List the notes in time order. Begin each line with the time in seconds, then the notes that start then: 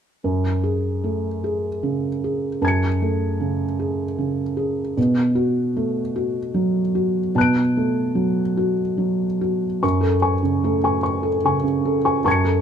0.24 F#2
0.64 G#4
1.04 A3
1.44 G#4
1.83 C#3
2.24 G#4
2.62 F#2 A5 G#6
2.68 C#7
3.02 A3
3.40 C#3
3.79 G#4
4.18 C#3
4.57 G#4
4.97 B2
5.35 F#4
5.77 A3
6.16 F#4
6.54 F#3
6.95 F#4
7.35 B2 A5 F#6
7.41 D7
7.77 A3
8.15 F#3
8.57 F#4
8.98 F#3
9.41 F#4
9.83 F#2 C#6
10.01 A4
10.22 G#5 C#6
10.43 C#3
10.64 A3 A4
10.84 G#5 C#6
11.03 C#6
11.23 A4
11.45 C#3 G#5 C#6
11.63 C#3
11.85 A4
12.05 G#5 C#6
12.25 F#2 A5 C#6 G#6
12.31 C#7
12.45 A4